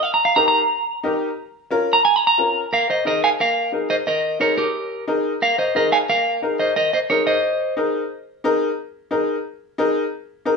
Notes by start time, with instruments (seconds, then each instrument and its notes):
0.03 clean electric guitar F5
0.14 clean electric guitar A#5
0.25 clean electric guitar F5
0.36 upright piano D#4 G4 A#4, clean electric guitar A#5
0.48 clean electric guitar A#5
1.03 upright piano D#4 G4 A#4
1.71 upright piano C#4 F4 A#4
1.93 clean electric guitar A#5
2.05 clean electric guitar G#5
2.16 clean electric guitar A#5
2.27 clean electric guitar A#5
2.38 upright piano C#4 F4 A#4
2.73 clean electric guitar A#4 F5
2.90 clean electric guitar C5 D#5
3.05 upright piano D#4 G#4 A#4, clean electric guitar A#4 D#5
3.24 clean electric guitar F5 G#5
3.40 clean electric guitar A#4 F5
3.72 upright piano D#4 G#4 A#4
3.90 clean electric guitar C5 D#5
4.07 clean electric guitar A#4 D#5
4.40 upright piano D#4 G#4 A#4, clean electric guitar A#4 C#5
4.57 clean electric guitar G4 A#4
5.07 upright piano D#4 G#4 A#4
5.42 clean electric guitar A#4 F5
5.58 clean electric guitar C5 D#5
5.75 upright piano D#4 G#4 A#4, clean electric guitar A#4 D#5
5.92 clean electric guitar F5 G#5
6.09 clean electric guitar A#4 F5
6.42 upright piano D#4 G#4 A#4
6.60 clean electric guitar C5 D#5
6.76 clean electric guitar A#4 D#5
6.93 clean electric guitar C5 D#5
7.10 upright piano D#4 G#4 A#4, clean electric guitar A#4 C#5
7.27 clean electric guitar C5 D#5
7.77 upright piano D#4 G#4 A#4
8.44 upright piano D#4 G#4 A#4
9.11 upright piano D#4 G#4 A#4
9.78 upright piano D#4 G#4 A#4
10.45 upright piano D#4 G#4 A#4